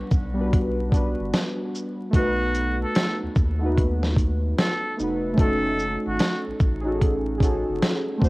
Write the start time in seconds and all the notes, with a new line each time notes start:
Already playing: G3 B3 D4 B4 F#5
0.11 B1, kick, shaker
0.33 G3 B3
0.37 D4 F#4 B4
0.53 kick, closed hi-hat
0.89 G3 B3 D4, kick
0.94 F#4 B4, closed hi-hat, shaker
1.19 G1
1.34 snare, closed hi-hat
1.75 shaker
2.11 B1 A3 B3 D#4, kick, closed hi-hat
2.16 F#4 B4
2.55 closed hi-hat, shaker
2.84 A4
2.95 snare, closed hi-hat
3.23 D#2
3.36 D#2, kick, shaker
3.59 A3 B3 D#4
3.64 F#4 B4
3.78 kick, closed hi-hat
4.03 snare
4.16 kick, closed hi-hat, shaker
4.58 A4, snare, closed hi-hat
4.96 F1 A3 B3 D#4, shaker
5.02 F#4 B4
5.34 A3 C#4 D#4, kick
5.38 F#1 F#4 A4, closed hi-hat
5.79 shaker
6.06 G#1 F#4
6.19 snare, closed hi-hat
6.47 A1
6.60 A1, kick, shaker
6.81 C#4 D#4 G#4
6.86 F#4 A4
7.01 kick, closed hi-hat
7.38 C#4 D#4 G#4, kick
7.43 F#4 A4, closed hi-hat, shaker
7.69 F#1
7.82 snare, closed hi-hat
8.17 A3 C4 D4
8.22 D1 F#4 C5, kick, shaker